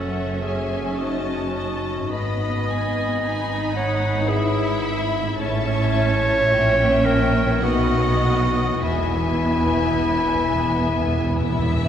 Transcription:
Already playing: double bass section F#1, harp F#2 A3 C#4 F#4, cello section F#2, viola section C#4, clarinet A4, violin section E5 F#5
0.43 clarinet G#4, violin section G#5
0.80 harp F#2
0.84 harp A3
0.89 harp D#4
0.93 harp F#4
0.98 clarinet F#4, violin section D#5 A5
1.56 violin section D#5
1.96 harp G#2
2.00 harp B3
2.05 harp D#4
2.09 harp B4, clarinet D#5
2.14 double bass section G#1, cello section G#2, viola section B3, violin section D#5 B5
2.68 violin section G#5
3.21 viola section D#4, violin section G#5 B5
3.75 clarinet C#5, violin section F#5
4.09 harp G#2
4.14 harp B3
4.18 harp E4
4.23 harp B4, violin section B5
4.27 viola section E4, clarinet G#4, violin section E5
5.21 harp A2
5.26 harp C#4
5.30 harp E4
5.35 harp A4
5.39 double bass section A1, cello section A2, viola section C#4, clarinet C#5, violin section E5 A5
6.30 harp A#2
6.35 harp C#4
6.39 harp E4
6.44 harp G4
6.48 double bass section A#1, cello section A#2, viola section C#4, violin section E5 G5
7.05 clarinet A#4
7.43 harp B2
7.47 harp B3
7.52 harp D#4
7.57 harp F#4
7.61 double bass section B1, cello section B2, viola section B3, clarinet F#4, violin section D#5 F#5
8.63 harp E3
8.67 harp B3
8.71 harp E4
8.76 harp G#4
8.81 double bass section E1, cello section E2, timpani E2, viola section B3, clarinet E4, violin section E5 G#5
8.91 timpani E2
9.00 timpani E2
9.16 timpani E2
9.24 timpani E2
9.34 timpani E2
9.42 timpani E2
9.51 timpani E2
9.59 timpani E2
9.66 timpani E2
9.74 timpani E2
9.84 timpani E2
9.91 timpani E2
9.99 timpani E2
10.08 timpani E2
10.18 timpani E2
10.27 timpani E2
10.35 timpani E2
10.45 timpani E2
10.53 timpani E2
10.62 timpani E2
10.71 timpani E2
10.80 timpani E2
10.89 timpani E2
10.97 timpani E2
11.06 timpani E2
11.14 timpani E2
11.24 timpani E2
11.31 timpani E2, violin section E4
11.38 timpani E2, violin section E5
11.49 timpani E2
11.59 timpani E2
11.67 timpani E2
11.76 timpani E2
11.85 timpani E2

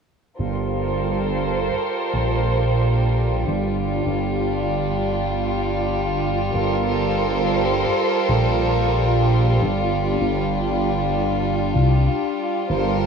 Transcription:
0.38 detuned saw bass G1, violin section G3 F4 A4 A#4 C5
2.14 detuned saw bass A#1
3.46 detuned saw bass G1, violin section D4
4.06 detuned saw bass G1
6.53 detuned saw bass G1, violin section A4 A#4 C5
8.29 detuned saw bass A#1
9.61 detuned saw bass G1, violin section D4
10.21 detuned saw bass G1
11.75 detuned saw bass C2
12.69 detuned saw bass G1, violin section G3 A4 A#4 C5

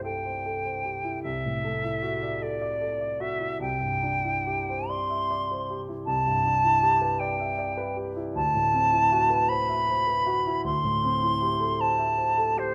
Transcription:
Already playing: grand piano C2 G2 A3 E4 G4 C5
0.04 grand piano A4, flute G5
0.26 grand piano C5
0.46 grand piano A4
0.65 grand piano C5
0.85 grand piano G4
1.04 grand piano E4
1.23 grand piano C2, flute E5
1.45 grand piano A2
1.64 grand piano A3
1.84 grand piano E4
2.03 grand piano F#4
2.23 grand piano D5
2.42 grand piano A4, flute D5
2.62 grand piano D5
2.81 grand piano A4
3.01 grand piano D5
3.20 grand piano F#4, flute E5
3.40 grand piano E4
3.60 grand piano C2, flute G5
3.81 grand piano G2
4.03 grand piano D4
4.24 grand piano E4
4.47 grand piano G4
4.69 grand piano C5
4.89 grand piano D5, flute C6
5.10 grand piano E5
5.31 grand piano D5
5.51 grand piano C5
5.70 grand piano G4
5.89 grand piano E4
6.06 grand piano C2, flute A5
6.27 grand piano G2
6.45 grand piano D4
6.64 grand piano E4
6.83 grand piano G4
7.01 grand piano B4
7.19 grand piano D5, flute G5
7.40 grand piano E5
7.58 grand piano D5
7.77 grand piano B4
7.96 grand piano G4
8.16 grand piano E4
8.35 grand piano D2, flute A5
8.55 grand piano A2
8.74 grand piano C4
8.93 grand piano E4
9.12 grand piano F#4
9.30 grand piano B4
9.48 grand piano C5, flute B5
9.68 grand piano E5
9.89 grand piano C5
10.07 grand piano B4
10.26 grand piano F#4
10.47 grand piano E4
10.64 grand piano D2, flute C6
10.84 grand piano A2
11.04 grand piano C4
11.23 grand piano E4
11.42 grand piano G4
11.60 grand piano A4
11.80 grand piano C5, flute A5
11.98 grand piano E5
12.18 grand piano C5
12.38 grand piano A4
12.57 grand piano G4, flute C5

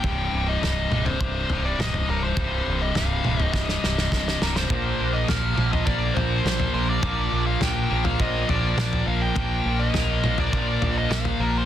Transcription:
Already playing: lead electric guitar G5
0.03 picked electric bass C1, clean electric guitar C2 G2 C3 G3 D#4, kick, floor tom
0.32 picked electric bass C1, clean electric guitar G2 C3 G3 D#4
0.48 clean electric guitar C3 G3 D#4, lead electric guitar D#5
0.61 picked electric bass C1, clean electric guitar C2 G2 C3 G3 D#4, snare, floor tom
0.90 picked electric bass C1, clean electric guitar G2 C3 G3, mid tom
0.94 distorted electric guitar C2, clean electric guitar D#4
1.05 clean electric guitar C3 G3 D#4, lead electric guitar C5, floor tom
1.20 picked electric bass C1, clean electric guitar G2 C3 G3 D#4, lead electric guitar C5, kick
1.35 clean electric guitar C3 G3 D#4
1.49 picked electric bass C1, clean electric guitar G2 C3 G3 D#4, floor tom
1.64 clean electric guitar C3 G3 D#4, lead electric guitar D5
1.78 picked electric bass C1, lead electric guitar D#5, snare, mid tom
1.94 floor tom
2.08 picked electric bass C1, clean electric guitar G2 C3 G3 D#4, lead electric guitar A#4
2.22 clean electric guitar C3 G3 D#4, lead electric guitar C5
2.37 picked electric bass C1, clean electric guitar C2 G2 C3 G3 D#4, kick, floor tom
2.66 picked electric bass C1, clean electric guitar G2 C3 G3 D#4
2.80 clean electric guitar C3 G3 D#4, lead electric guitar D#5
2.95 picked electric bass C1, clean electric guitar C2 G2 C3 G3 D#4, lead electric guitar F5, snare, floor tom
3.24 picked electric bass C1, distorted electric guitar C2, clean electric guitar G2 C3 G3 D#4, mid tom
3.38 clean electric guitar C3 G3 D#4, floor tom
3.42 lead electric guitar D#5
3.53 picked electric bass C1, clean electric guitar C2 G2 C3 G3 D#4, lead electric guitar D#5, kick, snare
3.67 clean electric guitar C3 G3 D#4, snare
3.82 picked electric bass C1, clean electric guitar G2 C3 G3 D#4, snare
3.97 clean electric guitar C3 G3 D#4, snare
4.12 picked electric bass C1, kick, snare
4.28 snare
4.41 picked electric bass C1, clean electric guitar G2 C3 G3 D#4, lead electric guitar A#4, snare
4.55 clean electric guitar C3 G3 D#4, lead electric guitar C5, snare
4.69 picked electric bass A#1, clean electric guitar A#2 F3 A#3 D4 F4 A#4, kick, floor tom
4.98 picked electric bass A#1, clean electric guitar A#3 D4 F4 A#4
5.12 clean electric guitar A#3 D4 F4 A#4, lead electric guitar D#5
5.28 picked electric bass A#1, clean electric guitar A#2 F3 A#3 D4 F4 A#4, lead electric guitar F5, snare, floor tom
5.56 picked electric bass A#1, distorted electric guitar A#2 F3, clean electric guitar A#3 D4 F4 A#4, mid tom
5.71 clean electric guitar A#3 D4 F4 A#4, lead electric guitar D#5, floor tom
5.85 picked electric bass A#1, clean electric guitar A#2 F3 A#3 D4 F4 A#4, lead electric guitar D5, kick
5.99 clean electric guitar A#3 D4 F4 A#4
6.14 picked electric bass A#1, clean electric guitar A#3 D4 F4 A#4, lead electric guitar C5, floor tom
6.29 clean electric guitar A#3 D4 F4 A#4
6.44 picked electric bass A#1, snare, mid tom
6.60 floor tom
6.73 picked electric bass A#1, clean electric guitar A#3 D4 F4 A#4, lead electric guitar C5
6.88 clean electric guitar A#3 D4 F4 A#4, lead electric guitar D5
7.02 picked electric bass A#1, clean electric guitar A#2 F3 A#3 D4 F4 A#4, kick, floor tom
7.31 picked electric bass A#1, clean electric guitar A#3 D4 F4 A#4
7.46 clean electric guitar A#3 D4 F4 A#4, lead electric guitar F5
7.60 picked electric bass A#1, clean electric guitar A#2 F3 A#3 D4 F4 A#4, lead electric guitar G5, snare, floor tom
7.90 picked electric bass A#1, distorted electric guitar F3, clean electric guitar A#3 D4 F4 A#4
7.94 distorted electric guitar A#2
8.04 clean electric guitar A#3 D4 F4 A#4, lead electric guitar F5, floor tom
8.19 picked electric bass A#1, clean electric guitar A#2 F3 A#3 D4 F4 A#4, lead electric guitar D#5, kick
8.34 clean electric guitar A#3 D4 F4 A#4
8.49 picked electric bass A#1, clean electric guitar A#3 D4 F4 A#4, lead electric guitar D5, floor tom
8.63 clean electric guitar A#3 D4 F4 A#4
8.77 picked electric bass A#1, snare, mid tom
8.93 floor tom
9.06 picked electric bass A#1, clean electric guitar A#3 D4 F4 A#4, lead electric guitar F5
9.21 clean electric guitar A#3 D4 F4 A#4, lead electric guitar G5
9.35 picked electric bass A#1, clean electric guitar A#2 F3 A#3 D4 F4 A#4, kick, floor tom
9.65 picked electric bass A#1, clean electric guitar A#3 D4 F4 A#4
9.79 clean electric guitar A#3 F4 A#4, lead electric guitar D#5
9.94 picked electric bass A#1, clean electric guitar A#2 F3 A#3 F4 A#4, snare, floor tom
10.23 picked electric bass A#1, distorted electric guitar F3, clean electric guitar A#3 D4 F4 A#4, mid tom
10.28 distorted electric guitar A#2
10.38 clean electric guitar A#3 D4 F4 A#4, lead electric guitar D5, floor tom
10.52 picked electric bass A#1, clean electric guitar A#2 F3 A#3 D4 F4 A#4, lead electric guitar D5, kick
10.68 clean electric guitar A#3 D4 F4 A#4
10.82 picked electric bass A#1, clean electric guitar A#3 D4 F4 A#4, floor tom
10.97 clean electric guitar A#3 D4 F4 A#4, lead electric guitar D#5
11.11 lead electric guitar F5, snare, mid tom
11.25 floor tom
11.40 picked electric bass A#1, clean electric guitar A#3 D4 F4 A#4, lead electric guitar A#4
11.55 clean electric guitar A#3 D4 F4 A#4, lead electric guitar C5

